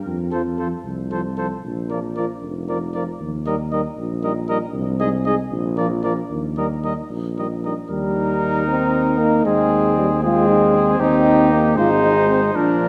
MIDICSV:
0, 0, Header, 1, 6, 480
1, 0, Start_track
1, 0, Tempo, 525855
1, 58, Time_signature, 6, 3, 24, 8
1, 2458, Tempo, 514580
1, 5338, Tempo, 530973
1, 7258, Tempo, 516796
1, 11884, End_track
2, 0, Start_track
2, 0, Title_t, "Trumpet"
2, 0, Program_c, 0, 56
2, 299, Note_on_c, 0, 72, 33
2, 385, Note_off_c, 0, 72, 0
2, 539, Note_on_c, 0, 72, 36
2, 625, Note_off_c, 0, 72, 0
2, 1020, Note_on_c, 0, 72, 35
2, 1107, Note_off_c, 0, 72, 0
2, 1263, Note_on_c, 0, 72, 33
2, 1350, Note_off_c, 0, 72, 0
2, 1740, Note_on_c, 0, 74, 32
2, 1827, Note_off_c, 0, 74, 0
2, 1977, Note_on_c, 0, 74, 35
2, 2064, Note_off_c, 0, 74, 0
2, 2459, Note_on_c, 0, 74, 39
2, 2545, Note_off_c, 0, 74, 0
2, 2692, Note_on_c, 0, 74, 38
2, 2780, Note_off_c, 0, 74, 0
2, 3177, Note_on_c, 0, 75, 34
2, 3264, Note_off_c, 0, 75, 0
2, 3419, Note_on_c, 0, 75, 42
2, 3505, Note_off_c, 0, 75, 0
2, 3900, Note_on_c, 0, 75, 45
2, 3985, Note_off_c, 0, 75, 0
2, 4136, Note_on_c, 0, 75, 53
2, 4221, Note_off_c, 0, 75, 0
2, 4609, Note_on_c, 0, 75, 52
2, 4697, Note_off_c, 0, 75, 0
2, 4850, Note_on_c, 0, 75, 57
2, 4938, Note_off_c, 0, 75, 0
2, 5331, Note_on_c, 0, 74, 54
2, 5418, Note_off_c, 0, 74, 0
2, 5568, Note_on_c, 0, 74, 52
2, 5656, Note_off_c, 0, 74, 0
2, 6057, Note_on_c, 0, 75, 37
2, 6144, Note_off_c, 0, 75, 0
2, 6301, Note_on_c, 0, 75, 36
2, 6387, Note_off_c, 0, 75, 0
2, 6786, Note_on_c, 0, 75, 37
2, 6871, Note_off_c, 0, 75, 0
2, 7030, Note_on_c, 0, 75, 33
2, 7114, Note_off_c, 0, 75, 0
2, 7262, Note_on_c, 0, 70, 59
2, 8666, Note_off_c, 0, 70, 0
2, 8704, Note_on_c, 0, 68, 58
2, 9407, Note_off_c, 0, 68, 0
2, 9418, Note_on_c, 0, 68, 60
2, 10134, Note_on_c, 0, 67, 70
2, 10148, Note_off_c, 0, 68, 0
2, 10850, Note_on_c, 0, 72, 64
2, 10864, Note_off_c, 0, 67, 0
2, 11580, Note_on_c, 0, 70, 63
2, 11594, Note_off_c, 0, 72, 0
2, 11884, Note_off_c, 0, 70, 0
2, 11884, End_track
3, 0, Start_track
3, 0, Title_t, "Flugelhorn"
3, 0, Program_c, 1, 56
3, 283, Note_on_c, 1, 69, 37
3, 373, Note_off_c, 1, 69, 0
3, 530, Note_on_c, 1, 69, 33
3, 618, Note_off_c, 1, 69, 0
3, 1013, Note_on_c, 1, 69, 31
3, 1102, Note_off_c, 1, 69, 0
3, 1251, Note_on_c, 1, 69, 36
3, 1340, Note_off_c, 1, 69, 0
3, 1725, Note_on_c, 1, 70, 36
3, 1815, Note_off_c, 1, 70, 0
3, 1967, Note_on_c, 1, 70, 33
3, 2056, Note_off_c, 1, 70, 0
3, 2452, Note_on_c, 1, 70, 33
3, 2540, Note_off_c, 1, 70, 0
3, 2692, Note_on_c, 1, 70, 37
3, 2779, Note_off_c, 1, 70, 0
3, 3182, Note_on_c, 1, 70, 43
3, 3267, Note_off_c, 1, 70, 0
3, 3427, Note_on_c, 1, 70, 39
3, 3511, Note_off_c, 1, 70, 0
3, 3891, Note_on_c, 1, 70, 42
3, 3977, Note_off_c, 1, 70, 0
3, 4129, Note_on_c, 1, 70, 54
3, 4216, Note_off_c, 1, 70, 0
3, 4608, Note_on_c, 1, 68, 55
3, 4695, Note_off_c, 1, 68, 0
3, 4854, Note_on_c, 1, 68, 53
3, 4941, Note_off_c, 1, 68, 0
3, 5324, Note_on_c, 1, 70, 45
3, 5413, Note_off_c, 1, 70, 0
3, 5568, Note_on_c, 1, 70, 48
3, 5657, Note_off_c, 1, 70, 0
3, 6056, Note_on_c, 1, 70, 43
3, 6143, Note_off_c, 1, 70, 0
3, 6297, Note_on_c, 1, 70, 40
3, 6384, Note_off_c, 1, 70, 0
3, 6780, Note_on_c, 1, 70, 33
3, 6866, Note_off_c, 1, 70, 0
3, 7020, Note_on_c, 1, 70, 36
3, 7106, Note_off_c, 1, 70, 0
3, 7252, Note_on_c, 1, 63, 60
3, 8661, Note_off_c, 1, 63, 0
3, 8698, Note_on_c, 1, 60, 58
3, 9403, Note_off_c, 1, 60, 0
3, 9418, Note_on_c, 1, 60, 67
3, 10136, Note_on_c, 1, 63, 72
3, 10150, Note_off_c, 1, 60, 0
3, 10834, Note_off_c, 1, 63, 0
3, 10839, Note_on_c, 1, 63, 71
3, 11575, Note_on_c, 1, 62, 64
3, 11589, Note_off_c, 1, 63, 0
3, 11884, Note_off_c, 1, 62, 0
3, 11884, End_track
4, 0, Start_track
4, 0, Title_t, "French horn"
4, 0, Program_c, 2, 60
4, 292, Note_on_c, 2, 65, 31
4, 380, Note_off_c, 2, 65, 0
4, 531, Note_on_c, 2, 65, 35
4, 619, Note_off_c, 2, 65, 0
4, 1013, Note_on_c, 2, 65, 34
4, 1101, Note_off_c, 2, 65, 0
4, 1256, Note_on_c, 2, 65, 35
4, 1344, Note_off_c, 2, 65, 0
4, 1738, Note_on_c, 2, 65, 32
4, 1825, Note_off_c, 2, 65, 0
4, 1977, Note_on_c, 2, 65, 35
4, 2064, Note_off_c, 2, 65, 0
4, 2457, Note_on_c, 2, 65, 34
4, 2544, Note_off_c, 2, 65, 0
4, 2690, Note_on_c, 2, 65, 39
4, 2778, Note_off_c, 2, 65, 0
4, 3178, Note_on_c, 2, 63, 35
4, 3265, Note_off_c, 2, 63, 0
4, 3414, Note_on_c, 2, 63, 41
4, 3500, Note_off_c, 2, 63, 0
4, 3894, Note_on_c, 2, 63, 45
4, 3980, Note_off_c, 2, 63, 0
4, 4135, Note_on_c, 2, 63, 51
4, 4221, Note_off_c, 2, 63, 0
4, 4608, Note_on_c, 2, 63, 48
4, 4696, Note_off_c, 2, 63, 0
4, 4846, Note_on_c, 2, 63, 55
4, 4935, Note_off_c, 2, 63, 0
4, 5333, Note_on_c, 2, 65, 51
4, 5420, Note_off_c, 2, 65, 0
4, 5566, Note_on_c, 2, 65, 51
4, 5655, Note_off_c, 2, 65, 0
4, 6056, Note_on_c, 2, 63, 37
4, 6143, Note_off_c, 2, 63, 0
4, 6294, Note_on_c, 2, 63, 33
4, 6381, Note_off_c, 2, 63, 0
4, 6782, Note_on_c, 2, 63, 34
4, 6868, Note_off_c, 2, 63, 0
4, 7022, Note_on_c, 2, 63, 34
4, 7108, Note_off_c, 2, 63, 0
4, 7254, Note_on_c, 2, 55, 66
4, 7941, Note_off_c, 2, 55, 0
4, 7977, Note_on_c, 2, 60, 77
4, 8457, Note_on_c, 2, 58, 68
4, 8471, Note_off_c, 2, 60, 0
4, 8702, Note_on_c, 2, 56, 76
4, 8716, Note_off_c, 2, 58, 0
4, 9177, Note_off_c, 2, 56, 0
4, 9183, Note_on_c, 2, 55, 65
4, 9290, Note_off_c, 2, 55, 0
4, 9426, Note_on_c, 2, 56, 83
4, 10119, Note_off_c, 2, 56, 0
4, 10129, Note_on_c, 2, 60, 91
4, 10607, Note_on_c, 2, 58, 76
4, 10620, Note_off_c, 2, 60, 0
4, 10847, Note_on_c, 2, 56, 93
4, 10861, Note_off_c, 2, 58, 0
4, 11565, Note_off_c, 2, 56, 0
4, 11571, Note_on_c, 2, 53, 71
4, 11884, Note_off_c, 2, 53, 0
4, 11884, End_track
5, 0, Start_track
5, 0, Title_t, "Euphonium"
5, 0, Program_c, 3, 58
5, 299, Note_on_c, 3, 53, 38
5, 386, Note_off_c, 3, 53, 0
5, 535, Note_on_c, 3, 53, 31
5, 622, Note_off_c, 3, 53, 0
5, 1019, Note_on_c, 3, 53, 33
5, 1106, Note_off_c, 3, 53, 0
5, 1256, Note_on_c, 3, 53, 32
5, 1344, Note_off_c, 3, 53, 0
5, 1741, Note_on_c, 3, 53, 39
5, 1827, Note_off_c, 3, 53, 0
5, 1979, Note_on_c, 3, 53, 32
5, 2066, Note_off_c, 3, 53, 0
5, 2457, Note_on_c, 3, 53, 36
5, 2544, Note_off_c, 3, 53, 0
5, 2698, Note_on_c, 3, 53, 39
5, 2785, Note_off_c, 3, 53, 0
5, 3179, Note_on_c, 3, 55, 45
5, 3265, Note_off_c, 3, 55, 0
5, 3418, Note_on_c, 3, 55, 38
5, 3504, Note_off_c, 3, 55, 0
5, 3894, Note_on_c, 3, 55, 50
5, 3980, Note_off_c, 3, 55, 0
5, 4129, Note_on_c, 3, 55, 48
5, 4216, Note_off_c, 3, 55, 0
5, 4608, Note_on_c, 3, 56, 60
5, 4695, Note_off_c, 3, 56, 0
5, 4849, Note_on_c, 3, 56, 50
5, 4937, Note_off_c, 3, 56, 0
5, 5334, Note_on_c, 3, 53, 55
5, 5421, Note_off_c, 3, 53, 0
5, 5569, Note_on_c, 3, 53, 47
5, 5657, Note_off_c, 3, 53, 0
5, 6054, Note_on_c, 3, 55, 44
5, 6142, Note_off_c, 3, 55, 0
5, 6296, Note_on_c, 3, 55, 34
5, 6383, Note_off_c, 3, 55, 0
5, 6780, Note_on_c, 3, 55, 34
5, 6867, Note_off_c, 3, 55, 0
5, 7017, Note_on_c, 3, 55, 32
5, 7104, Note_off_c, 3, 55, 0
5, 7976, Note_on_c, 3, 63, 66
5, 9380, Note_off_c, 3, 63, 0
5, 9425, Note_on_c, 3, 65, 70
5, 9652, Note_off_c, 3, 65, 0
5, 9657, Note_on_c, 3, 63, 70
5, 9895, Note_on_c, 3, 60, 65
5, 9909, Note_off_c, 3, 63, 0
5, 10128, Note_off_c, 3, 60, 0
5, 10133, Note_on_c, 3, 63, 78
5, 10834, Note_off_c, 3, 63, 0
5, 10850, Note_on_c, 3, 65, 69
5, 10958, Note_off_c, 3, 65, 0
5, 11095, Note_on_c, 3, 63, 64
5, 11202, Note_off_c, 3, 63, 0
5, 11331, Note_on_c, 3, 60, 57
5, 11440, Note_off_c, 3, 60, 0
5, 11572, Note_on_c, 3, 62, 57
5, 11884, Note_off_c, 3, 62, 0
5, 11884, End_track
6, 0, Start_track
6, 0, Title_t, "Tuba"
6, 0, Program_c, 4, 58
6, 57, Note_on_c, 4, 41, 50
6, 658, Note_off_c, 4, 41, 0
6, 775, Note_on_c, 4, 36, 42
6, 1380, Note_off_c, 4, 36, 0
6, 1500, Note_on_c, 4, 34, 47
6, 2100, Note_off_c, 4, 34, 0
6, 2218, Note_on_c, 4, 29, 44
6, 2817, Note_off_c, 4, 29, 0
6, 2934, Note_on_c, 4, 39, 48
6, 3535, Note_off_c, 4, 39, 0
6, 3651, Note_on_c, 4, 34, 50
6, 4249, Note_off_c, 4, 34, 0
6, 4363, Note_on_c, 4, 36, 60
6, 4969, Note_off_c, 4, 36, 0
6, 5088, Note_on_c, 4, 34, 68
6, 5693, Note_off_c, 4, 34, 0
6, 5811, Note_on_c, 4, 39, 54
6, 6416, Note_off_c, 4, 39, 0
6, 6530, Note_on_c, 4, 34, 46
6, 7135, Note_off_c, 4, 34, 0
6, 7255, Note_on_c, 4, 39, 49
6, 8663, Note_off_c, 4, 39, 0
6, 8700, Note_on_c, 4, 39, 60
6, 10101, Note_off_c, 4, 39, 0
6, 10131, Note_on_c, 4, 39, 70
6, 10847, Note_on_c, 4, 32, 66
6, 10860, Note_off_c, 4, 39, 0
6, 11566, Note_off_c, 4, 32, 0
6, 11571, Note_on_c, 4, 34, 57
6, 11884, Note_off_c, 4, 34, 0
6, 11884, End_track
0, 0, End_of_file